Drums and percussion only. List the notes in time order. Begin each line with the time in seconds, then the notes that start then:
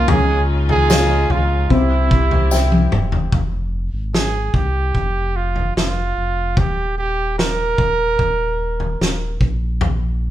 0.08 floor tom
0.69 floor tom
0.90 snare, tambourine
1.30 floor tom
1.70 kick
2.11 kick
2.31 floor tom
2.51 snare, tambourine
2.72 high tom
2.92 mid tom
3.12 floor tom
3.32 kick, floor tom
4.14 snare
4.54 kick, floor tom
4.94 kick, floor tom
5.56 floor tom
5.77 snare
6.57 kick, floor tom
7.39 snare
7.78 kick, floor tom
8.19 kick, floor tom
8.80 floor tom
9.01 snare
9.41 kick
9.81 floor tom